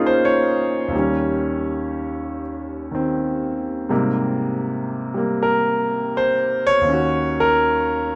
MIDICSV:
0, 0, Header, 1, 2, 480
1, 0, Start_track
1, 0, Tempo, 741656
1, 607, Time_signature, 4, 2, 24, 8
1, 5277, End_track
2, 0, Start_track
2, 0, Title_t, "Grand piano"
2, 0, Program_c, 0, 0
2, 0, Control_c, 0, 64, 127
2, 0, Note_on_c, 0, 46, 47
2, 0, Note_on_c, 0, 56, 46
2, 0, Note_on_c, 0, 58, 47
2, 0, Note_on_c, 0, 61, 41
2, 0, Note_on_c, 0, 63, 49
2, 0, Note_on_c, 0, 65, 67
2, 0, Note_on_c, 0, 68, 65
2, 42, Note_on_c, 0, 72, 76
2, 119, Note_off_c, 0, 72, 0
2, 162, Note_on_c, 0, 73, 77
2, 570, Note_on_c, 0, 39, 45
2, 588, Note_off_c, 0, 46, 0
2, 594, Note_on_c, 0, 51, 45
2, 601, Note_off_c, 0, 56, 0
2, 602, Note_off_c, 0, 58, 0
2, 608, Note_off_c, 0, 61, 0
2, 612, Note_off_c, 0, 63, 0
2, 614, Control_c, 0, 64, 0
2, 618, Note_on_c, 0, 55, 44
2, 619, Note_off_c, 0, 65, 0
2, 619, Note_off_c, 0, 68, 0
2, 639, Note_on_c, 0, 61, 53
2, 718, Control_c, 0, 64, 127
2, 1558, Note_off_c, 0, 73, 0
2, 1876, Note_off_c, 0, 51, 0
2, 1886, Note_on_c, 0, 51, 46
2, 1907, Note_on_c, 0, 60, 51
2, 2508, Note_off_c, 0, 39, 0
2, 2513, Note_off_c, 0, 55, 0
2, 2518, Note_on_c, 0, 44, 52
2, 2521, Note_off_c, 0, 51, 0
2, 2522, Note_on_c, 0, 55, 48
2, 2526, Note_on_c, 0, 58, 48
2, 2528, Note_on_c, 0, 48, 59
2, 2531, Note_off_c, 0, 60, 0
2, 2536, Control_c, 0, 64, 0
2, 2543, Note_off_c, 0, 61, 0
2, 2640, Control_c, 0, 64, 127
2, 3318, Note_off_c, 0, 55, 0
2, 3328, Note_on_c, 0, 55, 43
2, 3336, Note_off_c, 0, 58, 0
2, 3346, Note_on_c, 0, 58, 50
2, 3512, Note_on_c, 0, 70, 72
2, 3954, Note_off_c, 0, 70, 0
2, 3994, Note_on_c, 0, 72, 80
2, 4303, Note_off_c, 0, 72, 0
2, 4314, Note_on_c, 0, 73, 99
2, 4409, Note_on_c, 0, 39, 46
2, 4435, Note_on_c, 0, 51, 44
2, 4443, Note_off_c, 0, 44, 0
2, 4443, Note_off_c, 0, 55, 0
2, 4449, Note_off_c, 0, 48, 0
2, 4452, Note_off_c, 0, 58, 0
2, 4456, Control_c, 0, 64, 0
2, 4458, Note_on_c, 0, 61, 46
2, 4482, Note_on_c, 0, 66, 56
2, 4562, Control_c, 0, 64, 127
2, 4761, Note_off_c, 0, 73, 0
2, 4791, Note_on_c, 0, 70, 85
2, 5277, Note_off_c, 0, 39, 0
2, 5277, Note_off_c, 0, 51, 0
2, 5277, Note_off_c, 0, 61, 0
2, 5277, Note_off_c, 0, 66, 0
2, 5277, Note_off_c, 0, 70, 0
2, 5277, End_track
0, 0, End_of_file